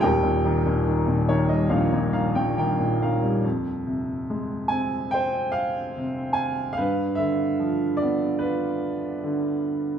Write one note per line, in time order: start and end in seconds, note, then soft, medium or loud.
0.01 3.40 D#1 medium
0.01 3.40 D#2 medium
0.01 2.97 G4 medium
0.01 2.97 A#4 medium
0.01 2.34 G5 medium
0.23 0.65 A#2 soft
0.45 0.86 D#3 medium
0.66 1.06 A#2 soft
0.87 1.27 D#3 soft
1.08 1.68 A#2 soft
1.29 2.12 D#3 medium
1.29 1.48 C#5 medium
1.49 3.19 G3 soft
1.49 1.69 D#5 medium
1.70 3.40 A#1 soft
1.70 1.91 A#2 medium
1.70 2.10 F5 medium
1.93 2.34 A#2 soft
2.13 2.56 D#3 soft
2.13 2.34 F5 medium
2.35 2.79 A#2 soft
2.35 2.56 G5 medium
2.58 3.01 D#3 soft
2.58 2.99 G5 medium
2.80 3.43 A#2 soft
3.02 3.44 D#3 soft
3.02 3.42 F5 medium
3.24 3.44 G3 soft
3.45 6.74 F2 soft
3.87 5.51 C3 soft
4.30 5.93 G#3 soft
4.68 6.34 C4 soft
4.68 5.13 G#5 medium
5.11 6.75 C5 medium
5.11 5.56 G5 medium
5.52 6.38 F5 medium
5.98 6.76 C3 soft
6.33 6.77 G#5 medium
6.73 7.18 F5 medium
6.78 9.99 G2 medium
6.78 8.37 B4 medium
7.15 8.79 D3 soft
7.15 7.96 E5 medium
7.60 9.19 F3 soft
7.97 8.37 D5 medium
8.02 9.61 B3 soft
8.39 9.99 F4 soft
8.39 9.59 B4 medium
9.24 9.99 D3 soft